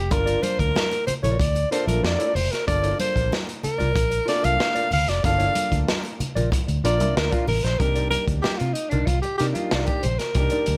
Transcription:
Already playing: F1 G4
0.11 G1 A#3 D4 F4 A#4, muted hollow-body jazz guitar stroke, kick, closed hi-hat, muted conga
0.26 F4 A#4 D5, closed hi-hat, muted conga
0.43 C5, muted hollow-body jazz guitar stroke, closed hi-hat, high conga
0.59 D2 A#4, muted hollow-body jazz guitar stroke, kick, closed hi-hat
0.75 muted hollow-body jazz guitar stroke, snare, high conga
0.91 muted hollow-body jazz guitar stroke, closed hi-hat, muted conga
1.07 C5, muted fingered electric bass stroke, closed hi-hat, low conga
1.23 A#1 F4 A#4 C#5 D5, closed hi-hat, low conga
1.39 D2 D5, muted hollow-body jazz guitar stroke, kick, closed hi-hat, muted conga
1.55 muted hollow-body jazz guitar stroke, closed hi-hat, muted conga
1.71 A#3 D4 F4 A4 A#4 C5 D5, closed hi-hat
1.86 A#1 F4 A#4 E5, closed hi-hat, high conga
2.03 F2 D5, muted hollow-body jazz guitar stroke, snare
2.19 F4 A#4 D5, closed hi-hat, muted conga
2.35 F1 C5, muted hollow-body jazz guitar stroke, open hi-hat, low conga
2.51 A#4, muted hollow-body jazz guitar stroke, snare, closed hi-hat
2.67 G1 A#3 D4 F4 A4 D5, muted hollow-body jazz guitar stroke, kick, closed hi-hat, muted conga
2.83 F4 A#4 D5, closed hi-hat, muted conga
2.98 C5, muted hollow-body jazz guitar stroke, closed hi-hat, high conga
3.14 A#1, muted hollow-body jazz guitar stroke, kick, closed hi-hat
3.30 muted hollow-body jazz guitar stroke, snare, muted conga, high conga
3.47 muted hollow-body jazz guitar stroke, closed hi-hat, muted conga
3.63 A#4, muted fingered electric bass stroke, closed hi-hat, low conga
3.78 C2 F4 A#4 D5, closed hi-hat, low conga
3.94 A#1, muted hollow-body jazz guitar stroke, kick, closed hi-hat, muted conga
4.10 muted hollow-body jazz guitar stroke, closed hi-hat, muted conga
4.26 A3 D4 F4 A4 A#4 D5, snare, closed hi-hat
4.34 A#3
4.42 C2 F4 A#4 E5 F5, closed hi-hat, high conga
4.59 muted hollow-body jazz guitar stroke, snare, muted conga
4.75 F4 A#4 D5, closed hi-hat, muted conga
4.91 D2 F5, muted hollow-body jazz guitar stroke, open hi-hat, low conga
5.06 F1 D5, muted hollow-body jazz guitar stroke, snare, closed hi-hat
5.23 G1 A#3 D4 F4 A4 F5, muted hollow-body jazz guitar stroke, kick, closed hi-hat, muted conga
5.38 F4 A#4 D5, closed hi-hat, muted conga
5.55 muted hollow-body jazz guitar stroke, closed hi-hat, high conga
5.71 D2, muted hollow-body jazz guitar stroke, kick, closed hi-hat
5.87 muted hollow-body jazz guitar stroke, snare, high conga
6.04 muted hollow-body jazz guitar stroke, closed hi-hat, muted conga
6.20 muted fingered electric bass stroke, closed hi-hat, low conga
6.35 A#1 F4 A#4 D5, closed hi-hat, low conga
6.52 muted hollow-body jazz guitar stroke, kick, closed hi-hat, high conga
6.68 D2, muted hollow-body jazz guitar stroke, closed hi-hat
6.84 A#1 A#3 D4 F4 A#4 D5, closed hi-hat
7.00 C2 F4 A#4 E5, closed hi-hat, high conga
7.15 D2 A#4, muted hollow-body jazz guitar stroke, snare
7.31 F4 A#4 D5, kick, closed hi-hat
7.47 A1 A#4, muted hollow-body jazz guitar stroke, open hi-hat, low conga
7.64 A#1 C5, muted hollow-body jazz guitar stroke, snare, closed hi-hat
7.79 C2 A#3 D4 D#4 G4 A#4, muted hollow-body jazz guitar stroke, kick, closed hi-hat
7.95 D#4 A#4 D5, closed hi-hat
8.10 A#4, muted hollow-body jazz guitar stroke, closed hi-hat, high conga
8.28 D2, muted hollow-body jazz guitar stroke, kick, closed hi-hat
8.42 G4, muted hollow-body jazz guitar stroke, snare, high conga
8.57 C3 F4, muted hollow-body jazz guitar stroke, closed hi-hat, muted conga
8.73 D#4, closed hi-hat
8.90 C2 D4 A#4 D5, closed hi-hat, low conga
8.94 D#4
9.06 C2 F4, kick, closed hi-hat, high conga
9.22 G4, muted hollow-body jazz guitar stroke, closed hi-hat, muted conga
9.38 C3 A#3 D4 D#4 G4 A#4, snare, closed hi-hat
9.42 D5
9.54 F4 A#4 D#5, closed hi-hat, high conga
9.58 D#4
9.71 C2 D#4 A#4 D5, snare, muted conga
9.84 G4 A#4, kick, closed hi-hat, muted conga
10.02 A#1 C5, muted hollow-body jazz guitar stroke, closed hi-hat, low conga
10.19 A#4, muted hollow-body jazz guitar stroke, snare, closed hi-hat
10.35 C2 A#3 D4 D#4 G4, muted hollow-body jazz guitar stroke, kick, closed hi-hat, muted conga
10.50 D#4 A#4 D5, closed hi-hat, muted conga
10.66 D2, muted hollow-body jazz guitar stroke, closed hi-hat, high conga

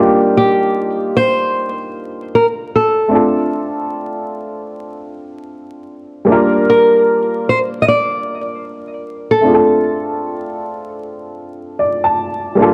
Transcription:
Already playing: G3 A#3 D4 D#4 F4
0.00 G4
0.37 G4
1.16 C5
2.35 A#4
2.75 A4
3.08 A3 C4 D4
3.13 F4 A4
6.25 G3 A#3 D4
6.30 F4 A#4
6.70 A#4
7.49 C5
7.82 D#5
7.88 D5
9.31 A4
9.41 A3 C4 D4
9.46 F4 G#4
9.54 A4
11.79 D5
12.04 A5
12.55 G3 A#3 D4
12.60 F4 A4

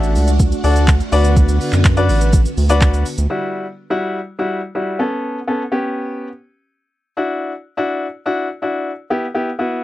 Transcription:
Already playing: A1 A3 D4 F#4 A4 E5
0.03 closed hi-hat, shaker
0.15 C#2, open hi-hat, shaker
0.28 closed hi-hat, shaker
0.40 kick, closed hi-hat, shaker
0.52 closed hi-hat, shaker
0.64 D2 D4 F#4 A4 D5, open hi-hat, shaker
0.76 closed hi-hat, shaker
0.88 kick, clap, closed hi-hat, shaker
1.00 closed hi-hat, shaker
1.12 D2 D3 B3 D4 F#4 B4 D5, open hi-hat, shaker
1.24 closed hi-hat, shaker
1.37 kick, closed hi-hat, shaker
1.49 closed hi-hat, shaker
1.61 open hi-hat, shaker
1.73 F#2, clap, closed hi-hat, shaker
1.85 kick, clap, closed hi-hat, shaker
1.97 D4 F#4 B4 D5, closed hi-hat, shaker
2.09 A1, open hi-hat, shaker
2.21 closed hi-hat, shaker
2.33 kick, closed hi-hat, shaker
2.46 closed hi-hat, shaker
2.57 D2, open hi-hat, shaker
2.69 D4 F#4 B4 D5, closed hi-hat, shaker
2.81 kick, clap, closed hi-hat, shaker
2.94 closed hi-hat, shaker
3.06 open hi-hat, shaker
3.18 D2, closed hi-hat, shaker
3.30 G3 E4 F#4
3.90 G3 E4 F#4
4.39 G3 E4 F#4
4.75 G3 E4 F#4
4.99 B3 C#4 A4
5.47 B3 C#4 A4
5.72 B3 C#4 G4
7.17 D4 E4 F#4
7.77 D4 E4 F#4
8.26 D4 E4 F#4
8.62 D4 E4 F#4
9.10 B3 E4 G4
9.34 B3 E4 G4
9.59 B3 E4 F#4

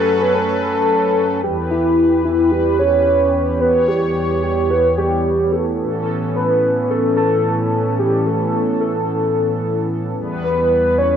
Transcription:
Already playing: F#2 F#3 C#4 A4 B4
0.21 B4
0.35 A4
0.62 A4
1.43 E2 E3 B3 G4 B4
1.70 E4
2.25 E4
2.52 G4
2.79 C#5
3.61 B4 C#5
3.88 G4
4.43 G4
4.70 B4
4.98 G4
5.52 A4
5.80 A2 C#4 A4
6.35 B4
6.90 A4
7.17 A4
7.99 G4
8.26 A4
8.81 A4
10.16 E2 G3 B3 B4
10.44 B4
10.98 C#5

